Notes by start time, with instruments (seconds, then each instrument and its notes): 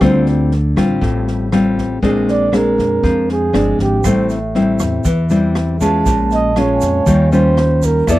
0.01 upright bass D2, nylon-string guitar D3 G3 C4 F4, flugelhorn C5, kick, cross-stick, snare
0.26 snare
0.51 snare
0.76 upright bass A1, nylon-string guitar G3 C4 F4, kick, cross-stick, snare
1.01 upright bass A1, nylon-string guitar A2, kick, snare
1.28 snare
1.52 nylon-string guitar G3 C4 F4, cross-stick, snare
1.78 kick, snare
2.02 upright bass A#1, nylon-string guitar A#2 G#3 C4 D4, kick, snare
2.28 flugelhorn D5, snare
2.52 nylon-string guitar G#3 C4 D4, cross-stick, snare
2.56 flugelhorn A#4
2.78 upright bass F2, kick, snare
3.03 upright bass F2, nylon-string guitar F3, kick, snare
3.29 flugelhorn G#4, snare
3.53 upright bass G1, nylon-string guitar G#3 C4 D4, cross-stick, snare
3.79 upright bass G#1, flugelhorn G4, kick, snare
4.04 upright bass A1, nylon-string guitar A2 G3 C4 E4, flugelhorn C5, kick, cross-stick, snare, shaker
4.29 vibraphone E5, snare, shaker
4.55 nylon-string guitar G3 C4 E4, snare
4.79 upright bass E2, kick, cross-stick, snare, shaker
5.05 upright bass E2, nylon-string guitar E3, kick, snare, shaker
5.30 nylon-string guitar G3 C4 E4, snare, shaker
5.55 cross-stick, snare
5.81 nylon-string guitar G#3 C#4 F4, vibraphone A5, kick, snare, shaker
6.06 upright bass A#1, nylon-string guitar A#2, kick, snare, shaker
6.31 flugelhorn D#5, snare, shaker
6.56 nylon-string guitar G#3 C#4 F4, flugelhorn C#5, vibraphone F5, cross-stick, snare
6.74 vibraphone G#5
6.81 upright bass F2, kick, snare, shaker
7.06 upright bass D#2, nylon-string guitar D#3 G3 C#4 F4, kick, snare, shaker
7.32 nylon-string guitar G3 C#4 F4, flugelhorn C5, snare, shaker
7.57 cross-stick, snare
7.82 flugelhorn A#4, kick, snare, shaker
8.07 upright bass F2, nylon-string guitar F3 B3 E4 A4, flugelhorn D5, vibraphone E5, kick, cross-stick, snare, shaker